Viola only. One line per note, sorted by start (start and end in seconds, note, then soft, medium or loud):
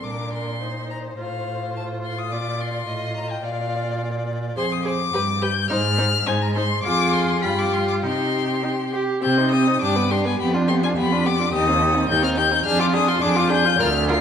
0.02 0.57 D4 medium
0.62 1.15 D#4 soft
1.19 3.40 F4 medium
3.43 4.53 F4 medium
4.56 4.64 G#4 medium
4.84 4.92 G#4 medium
5.13 5.21 G4 medium
5.41 5.49 G4 medium
5.70 5.78 D#4 medium
5.98 6.06 D#4 medium
6.26 6.34 D#4 medium
6.55 6.63 D#4 medium
6.84 7.40 F4 medium
7.43 8.04 F4 medium
8.02 8.57 D#4 medium
8.63 8.71 D#4 medium
8.93 9.23 G4 medium
9.23 9.39 C4 medium
9.38 9.54 D#4 medium
9.53 9.69 C4 medium
9.67 9.81 D#4 medium
9.82 9.98 D4 medium
9.96 10.13 B3 medium
10.11 10.27 D4 medium
10.25 10.40 B3 medium
10.40 10.57 B3 medium
10.55 10.71 D4 medium
10.69 10.85 B3 medium
10.83 10.97 D4 medium
10.98 11.14 B3 medium
11.12 11.27 D4 medium
11.26 11.41 B3 medium
11.40 11.53 D4 medium
11.53 11.69 D#4 medium
11.68 11.82 C4 medium
11.81 11.97 D#4 medium
11.95 12.09 C4 medium
12.09 12.24 D#4 medium
12.23 12.39 C4 medium
12.37 12.53 D#4 medium
12.51 12.65 C4 medium
12.65 12.81 D4 medium
12.79 12.95 F4 medium
12.93 13.09 D4 medium
13.07 13.22 F4 medium
13.22 13.38 D4 medium
13.36 13.52 F4 medium
13.50 13.66 D4 medium
13.65 13.78 F4 medium
13.79 13.87 F4 loud
14.09 14.17 F4 medium